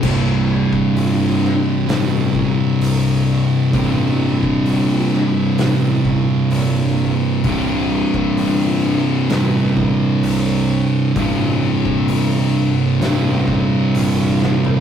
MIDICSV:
0, 0, Header, 1, 4, 480
1, 0, Start_track
1, 0, Tempo, 927357
1, 17, Time_signature, 4, 2, 24, 8
1, 7662, End_track
2, 0, Start_track
2, 0, Title_t, "Distorted electric guitar"
2, 0, Program_c, 0, 30
2, 12, Note_on_c, 0, 36, 84
2, 21, Note_on_c, 0, 43, 89
2, 31, Note_on_c, 0, 48, 104
2, 963, Note_off_c, 0, 43, 0
2, 965, Note_off_c, 0, 36, 0
2, 967, Note_on_c, 0, 36, 80
2, 976, Note_on_c, 0, 43, 77
2, 985, Note_off_c, 0, 48, 0
2, 987, Note_on_c, 0, 48, 84
2, 1920, Note_off_c, 0, 36, 0
2, 1920, Note_off_c, 0, 43, 0
2, 1922, Note_on_c, 0, 36, 82
2, 1931, Note_on_c, 0, 43, 99
2, 1937, Note_off_c, 0, 48, 0
2, 1939, Note_on_c, 0, 48, 99
2, 2877, Note_off_c, 0, 43, 0
2, 2883, Note_off_c, 0, 36, 0
2, 2885, Note_on_c, 0, 36, 87
2, 2892, Note_on_c, 0, 43, 84
2, 2898, Note_off_c, 0, 48, 0
2, 2900, Note_on_c, 0, 48, 74
2, 3837, Note_off_c, 0, 43, 0
2, 3857, Note_off_c, 0, 36, 0
2, 3859, Note_on_c, 0, 36, 99
2, 3864, Note_on_c, 0, 43, 98
2, 3871, Note_off_c, 0, 48, 0
2, 3873, Note_on_c, 0, 48, 100
2, 4803, Note_off_c, 0, 43, 0
2, 4812, Note_off_c, 0, 36, 0
2, 4814, Note_on_c, 0, 36, 87
2, 4824, Note_on_c, 0, 43, 81
2, 4831, Note_off_c, 0, 48, 0
2, 4833, Note_on_c, 0, 48, 93
2, 5763, Note_off_c, 0, 43, 0
2, 5768, Note_off_c, 0, 36, 0
2, 5770, Note_on_c, 0, 36, 84
2, 5779, Note_on_c, 0, 43, 102
2, 5780, Note_off_c, 0, 48, 0
2, 5782, Note_on_c, 0, 48, 93
2, 6717, Note_off_c, 0, 36, 0
2, 6721, Note_off_c, 0, 43, 0
2, 6723, Note_off_c, 0, 48, 0
2, 6725, Note_on_c, 0, 36, 79
2, 6736, Note_on_c, 0, 43, 81
2, 6740, Note_on_c, 0, 48, 84
2, 7662, Note_off_c, 0, 36, 0
2, 7662, Note_off_c, 0, 43, 0
2, 7662, Note_off_c, 0, 48, 0
2, 7662, End_track
3, 0, Start_track
3, 0, Title_t, "Picked electric bass"
3, 0, Program_c, 1, 34
3, 18, Note_on_c, 1, 24, 84
3, 324, Note_off_c, 1, 24, 0
3, 496, Note_on_c, 1, 31, 95
3, 802, Note_off_c, 1, 31, 0
3, 977, Note_on_c, 1, 33, 94
3, 1283, Note_off_c, 1, 33, 0
3, 1457, Note_on_c, 1, 36, 82
3, 1763, Note_off_c, 1, 36, 0
3, 1930, Note_on_c, 1, 33, 86
3, 2238, Note_off_c, 1, 33, 0
3, 2417, Note_on_c, 1, 31, 91
3, 2723, Note_off_c, 1, 31, 0
3, 2894, Note_on_c, 1, 33, 86
3, 3201, Note_off_c, 1, 33, 0
3, 3373, Note_on_c, 1, 34, 89
3, 3680, Note_off_c, 1, 34, 0
3, 3853, Note_on_c, 1, 24, 89
3, 4160, Note_off_c, 1, 24, 0
3, 4329, Note_on_c, 1, 31, 89
3, 4637, Note_off_c, 1, 31, 0
3, 4817, Note_on_c, 1, 33, 94
3, 5123, Note_off_c, 1, 33, 0
3, 5296, Note_on_c, 1, 36, 78
3, 5602, Note_off_c, 1, 36, 0
3, 5777, Note_on_c, 1, 33, 93
3, 6082, Note_off_c, 1, 33, 0
3, 6255, Note_on_c, 1, 31, 90
3, 6561, Note_off_c, 1, 31, 0
3, 6733, Note_on_c, 1, 33, 83
3, 7040, Note_off_c, 1, 33, 0
3, 7213, Note_on_c, 1, 34, 83
3, 7520, Note_off_c, 1, 34, 0
3, 7662, End_track
4, 0, Start_track
4, 0, Title_t, "Drums"
4, 15, Note_on_c, 9, 49, 109
4, 17, Note_on_c, 9, 36, 96
4, 67, Note_off_c, 9, 49, 0
4, 69, Note_off_c, 9, 36, 0
4, 376, Note_on_c, 9, 36, 76
4, 428, Note_off_c, 9, 36, 0
4, 499, Note_on_c, 9, 46, 56
4, 551, Note_off_c, 9, 46, 0
4, 746, Note_on_c, 9, 38, 34
4, 798, Note_off_c, 9, 38, 0
4, 978, Note_on_c, 9, 46, 62
4, 984, Note_on_c, 9, 38, 120
4, 1029, Note_off_c, 9, 46, 0
4, 1036, Note_off_c, 9, 38, 0
4, 1215, Note_on_c, 9, 36, 72
4, 1267, Note_off_c, 9, 36, 0
4, 1456, Note_on_c, 9, 46, 63
4, 1508, Note_off_c, 9, 46, 0
4, 1932, Note_on_c, 9, 46, 57
4, 1933, Note_on_c, 9, 36, 110
4, 1984, Note_off_c, 9, 46, 0
4, 1985, Note_off_c, 9, 36, 0
4, 2293, Note_on_c, 9, 36, 89
4, 2344, Note_off_c, 9, 36, 0
4, 2410, Note_on_c, 9, 46, 55
4, 2462, Note_off_c, 9, 46, 0
4, 2656, Note_on_c, 9, 38, 33
4, 2708, Note_off_c, 9, 38, 0
4, 2889, Note_on_c, 9, 46, 57
4, 2895, Note_on_c, 9, 38, 118
4, 2941, Note_off_c, 9, 46, 0
4, 2947, Note_off_c, 9, 38, 0
4, 3132, Note_on_c, 9, 36, 75
4, 3183, Note_off_c, 9, 36, 0
4, 3368, Note_on_c, 9, 46, 62
4, 3419, Note_off_c, 9, 46, 0
4, 3849, Note_on_c, 9, 46, 53
4, 3853, Note_on_c, 9, 36, 100
4, 3901, Note_off_c, 9, 46, 0
4, 3905, Note_off_c, 9, 36, 0
4, 4214, Note_on_c, 9, 36, 85
4, 4266, Note_off_c, 9, 36, 0
4, 4334, Note_on_c, 9, 46, 56
4, 4386, Note_off_c, 9, 46, 0
4, 4811, Note_on_c, 9, 46, 61
4, 4818, Note_on_c, 9, 38, 120
4, 4863, Note_off_c, 9, 46, 0
4, 4869, Note_off_c, 9, 38, 0
4, 5056, Note_on_c, 9, 36, 79
4, 5108, Note_off_c, 9, 36, 0
4, 5296, Note_on_c, 9, 46, 59
4, 5348, Note_off_c, 9, 46, 0
4, 5775, Note_on_c, 9, 46, 55
4, 5776, Note_on_c, 9, 36, 114
4, 5827, Note_off_c, 9, 46, 0
4, 5828, Note_off_c, 9, 36, 0
4, 6136, Note_on_c, 9, 36, 84
4, 6187, Note_off_c, 9, 36, 0
4, 6253, Note_on_c, 9, 46, 65
4, 6305, Note_off_c, 9, 46, 0
4, 6737, Note_on_c, 9, 46, 55
4, 6743, Note_on_c, 9, 38, 123
4, 6788, Note_off_c, 9, 46, 0
4, 6795, Note_off_c, 9, 38, 0
4, 6976, Note_on_c, 9, 36, 76
4, 7028, Note_off_c, 9, 36, 0
4, 7219, Note_on_c, 9, 46, 55
4, 7271, Note_off_c, 9, 46, 0
4, 7465, Note_on_c, 9, 38, 64
4, 7517, Note_off_c, 9, 38, 0
4, 7581, Note_on_c, 9, 43, 92
4, 7633, Note_off_c, 9, 43, 0
4, 7662, End_track
0, 0, End_of_file